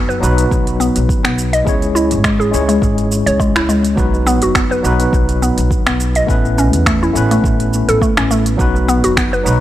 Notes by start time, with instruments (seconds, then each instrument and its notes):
Already playing: upright bass F#1, tine electric piano F#3 B3 D#4 F#4 B4
0.09 synth pluck B4, shaker
0.20 upright bass B1, tine electric piano F#3 B3 D#4 F#4, shaker
0.24 tine electric piano B4
0.38 closed hi-hat, shaker
0.51 upright bass B1, kick, shaker
0.67 closed hi-hat, shaker
0.80 synth pluck B3, shaker
0.96 upright bass B1, closed hi-hat, shaker
1.09 kick, shaker
1.24 upright bass B1, synth pluck B3, finger snap, closed hi-hat, shaker
1.38 shaker
1.53 synth pluck D#5, closed hi-hat, shaker
1.65 upright bass C#2, tine electric piano G#3 C#4 E4 G#4, kick, shaker
1.69 tine electric piano C#5
1.82 closed hi-hat, shaker
1.95 synth pluck E4, shaker
2.11 upright bass G#1, closed hi-hat, shaker
2.24 synth pluck G#3, finger snap, kick, shaker
2.40 synth pluck G#4, shaker
2.51 upright bass C#2, tine electric piano G#3 C#4 E4 G#4, shaker
2.55 tine electric piano C#5
2.69 synth pluck G#3, closed hi-hat, shaker
2.82 upright bass G#1, kick, shaker
2.98 closed hi-hat, shaker
3.12 shaker
3.26 upright bass C#2, synth pluck C#5, closed hi-hat, shaker
3.40 synth pluck G#3, kick, shaker
3.56 upright bass C#2, synth pluck E4, finger snap, closed hi-hat, shaker
3.69 synth pluck G#3, shaker
3.85 closed hi-hat, shaker
3.95 upright bass B1, tine electric piano F#3 B3 D#4 F#4, kick, shaker
3.99 tine electric piano B4
4.14 shaker
4.27 synth pluck B3, shaker
4.42 upright bass F#1, synth pluck F#4, closed hi-hat, shaker
4.55 synth pluck B3, finger snap, kick, shaker
4.71 synth pluck B4, shaker
4.82 upright bass B1, tine electric piano F#3 B3 D#4 F#4 B4, shaker
5.00 closed hi-hat, shaker
5.13 upright bass B1, kick, shaker
5.29 closed hi-hat, shaker
5.42 synth pluck B3, shaker
5.57 upright bass B1, closed hi-hat, shaker
5.71 kick, shaker
5.86 upright bass B1, synth pluck B3, finger snap, closed hi-hat, shaker
6.00 shaker
6.15 synth pluck D#5, closed hi-hat, shaker
6.27 upright bass A1, tine electric piano A3 B3 C#4 E4 B4, kick, shaker
6.45 shaker
6.58 synth pluck C#4, shaker
6.73 upright bass E2, closed hi-hat, shaker
6.86 synth pluck A3, finger snap, kick, shaker
7.03 synth pluck E4, shaker
7.13 upright bass A1, tine electric piano A3 B3 C#4 E4, shaker
7.17 tine electric piano B4
7.31 synth pluck A3, closed hi-hat, shaker
7.44 upright bass A1, kick, shaker
7.60 closed hi-hat, shaker
7.74 shaker
7.88 upright bass A1, synth pluck A4, closed hi-hat, shaker
8.02 synth pluck A3, kick, shaker
8.17 upright bass A1, synth pluck C#4, finger snap, closed hi-hat, shaker
8.31 synth pluck A3, shaker
8.46 closed hi-hat, shaker
8.57 upright bass B1, tine electric piano F#3 B3 D#4 F#4 B4, kick, shaker
8.76 shaker
8.88 synth pluck B3, shaker
9.03 upright bass F#1, synth pluck F#4, closed hi-hat, shaker
9.17 synth pluck B3, finger snap, kick, shaker
9.33 synth pluck B4, shaker
9.44 upright bass B1, tine electric piano F#3 B3 D#4 F#4, shaker
9.48 tine electric piano B4